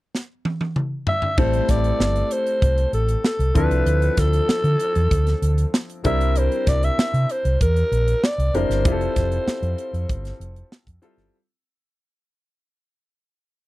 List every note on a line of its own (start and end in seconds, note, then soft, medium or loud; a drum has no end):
0.14 snare soft
0.45 high tom medium
0.61 high tom medium
0.76 mid tom medium
1.07 1.40 E5 loud
1.07 floor tom medium
1.22 floor tom medium
1.38 1.59 A1 medium
1.38 2.24 G3 medium
1.38 2.24 A3 medium
1.38 2.24 C4 medium
1.38 2.24 E4 medium
1.38 2.24 A4 medium
1.38 1.71 C5 medium
1.38 kick loud
1.38 crash medium
1.53 closed hi-hat soft
1.69 1.90 A1 medium
1.69 2.34 D5 loud
1.69 kick medium
1.69 snare soft
1.69 closed hi-hat medium
1.84 closed hi-hat soft
1.99 2.21 G1 medium
1.99 snare medium
2.16 closed hi-hat soft
2.31 2.93 C5 medium
2.31 closed hi-hat medium
2.47 closed hi-hat soft
2.62 2.83 C2 medium
2.62 kick medium
2.62 closed hi-hat medium
2.78 closed hi-hat soft
2.93 3.14 A1 medium
2.93 3.23 A4 medium
2.93 closed hi-hat medium
3.09 closed hi-hat soft
3.24 3.54 A4 medium
3.24 snare loud
3.39 3.50 C2 medium
3.39 closed hi-hat soft
3.54 3.66 D2 medium
3.54 4.55 F3 medium
3.54 4.55 C4 medium
3.54 4.55 D4 medium
3.54 4.55 E4 medium
3.54 4.55 A4 medium
3.54 4.21 B4 medium
3.54 kick medium
3.54 closed hi-hat medium
3.70 3.81 C2 medium
3.70 closed hi-hat soft
3.86 4.08 D2 loud
3.86 closed hi-hat medium
4.02 closed hi-hat soft
4.17 4.39 D2 medium
4.17 5.78 A4 loud
4.17 kick medium
4.17 snare soft
4.17 closed hi-hat medium
4.33 closed hi-hat soft
4.49 muted fingered electric bass stroke soft
4.49 snare medium
4.64 4.75 D3 medium
4.64 closed hi-hat soft
4.80 closed hi-hat medium
4.95 5.07 E2 medium
4.95 closed hi-hat soft
5.11 5.33 D2 medium
5.11 kick medium
5.11 closed hi-hat medium
5.27 snare soft
5.27 closed hi-hat soft
5.42 5.64 D2 medium
5.42 closed hi-hat medium
5.58 closed hi-hat soft
5.74 snare medium
5.90 closed hi-hat soft
6.04 6.47 C2 medium
6.04 7.04 G3 medium
6.04 7.04 C4 medium
6.04 7.04 D4 medium
6.04 7.05 E4 medium
6.04 7.05 A#4 medium
6.04 6.39 E5 medium
6.04 kick medium
6.04 closed hi-hat medium
6.21 closed hi-hat soft
6.36 6.70 C5 medium
6.36 closed hi-hat medium
6.52 closed hi-hat soft
6.67 6.88 C2 medium
6.67 6.86 D5 medium
6.67 kick medium
6.67 snare soft
6.67 closed hi-hat medium
6.83 7.33 E5 medium
6.83 closed hi-hat soft
6.98 muted fingered electric bass stroke soft
6.98 snare loud
7.14 7.24 C3 medium
7.14 closed hi-hat soft
7.29 7.62 C5 medium
7.29 closed hi-hat medium
7.45 7.56 C2 medium
7.45 closed hi-hat soft
7.61 7.82 E2 medium
7.61 8.25 A#4 medium
7.61 kick medium
7.61 closed hi-hat medium
7.76 closed hi-hat soft
7.92 8.13 A#1 medium
7.92 closed hi-hat medium
8.08 closed hi-hat soft
8.24 8.56 D5 medium
8.24 snare medium
8.38 8.49 C2 medium
8.38 closed hi-hat soft
8.53 8.64 F1 medium
8.53 8.76 G3 medium
8.53 8.76 C4 medium
8.53 8.76 D4 medium
8.53 8.76 E4 medium
8.53 8.76 A#4 medium
8.53 10.72 C5 loud
8.53 closed hi-hat medium
8.69 8.85 G1 medium
8.69 snare soft
8.69 closed hi-hat soft
8.85 9.06 F1 medium
8.85 9.70 G3 medium
8.85 9.70 C4 medium
8.85 9.71 E4 medium
8.85 9.71 F4 medium
8.85 8.92 G4 medium
8.85 kick loud
8.85 closed hi-hat medium
8.92 9.74 A4 medium
9.01 closed hi-hat soft
9.16 9.37 F1 medium
9.16 kick medium
9.16 snare soft
9.16 closed hi-hat medium
9.32 closed hi-hat soft
9.47 muted fingered electric bass stroke soft
9.47 snare medium
9.62 9.73 F2 medium
9.62 closed hi-hat soft
9.78 closed hi-hat medium
9.93 10.04 F2 medium
9.93 closed hi-hat soft
10.09 10.30 G1 medium
10.09 kick medium
10.09 closed hi-hat medium
10.25 snare soft
10.25 closed hi-hat soft
10.40 10.61 F1 medium
10.40 closed hi-hat medium
10.56 closed hi-hat soft
10.72 snare medium
10.87 10.97 F2 medium
10.87 kick medium
10.87 closed hi-hat medium
11.02 11.23 G3 medium
11.02 11.23 C4 medium
11.02 11.24 E4 medium
11.02 11.24 F4 medium
11.02 11.24 A4 medium
11.02 closed hi-hat medium
11.17 11.28 G1 medium
11.17 snare soft
11.17 closed hi-hat medium